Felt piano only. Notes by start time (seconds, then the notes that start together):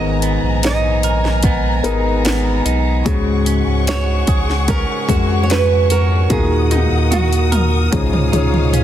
Already playing: G#2 D#3 B3 D#4 G#4 A#4
1.83 B3 D#4 G#4 A#4
3.05 G#2 G#3 C#4 F#4 G#4
5.09 G#3 C#4 F#4 G#4
6.30 A#2 A#3 D#4 F#4 A#4
7.92 G#2 C#4 D#4 F4 G#4
8.33 C#4 D#4 F4 G#4